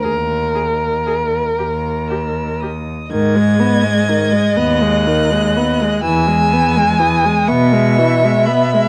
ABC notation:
X:1
M:6/8
L:1/16
Q:3/8=41
K:G#m
V:1 name="Violin"
a2 a2 a2 a2 e'2 d'2 | g'6 f'6 | e'4 d'2 c'4 b2 |]
V:2 name="Violin"
A8- A2 z2 | d12 | g6 e6 |]
V:3 name="Viola" clef=bass
G2 G2 G2 =G2 G2 G2 | D, G, B, G, D, G, B, G, D, G, B, G, | E, G, B, G, E, G, B, G, E, G, B, G, |]
V:4 name="Cello" clef=bass
D,,6 D,,6 | G,,6 D,,6 | E,,6 B,,6 |]